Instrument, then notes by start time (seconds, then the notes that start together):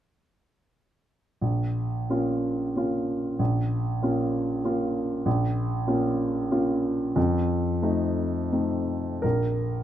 grand piano
1.42 A#1
2.10 A#3 C#4 F4
2.76 A#3 C#4 F4
3.39 A#1
4.02 A#3 C#4 F4
4.64 A#3 C#4 F4
5.26 A#1
5.87 A#3 C#4 F4
6.51 A#3 C#4 F4
7.16 F2
7.82 A3 C4 D#4
8.52 A3 C4 D#4
9.22 A#1 A#4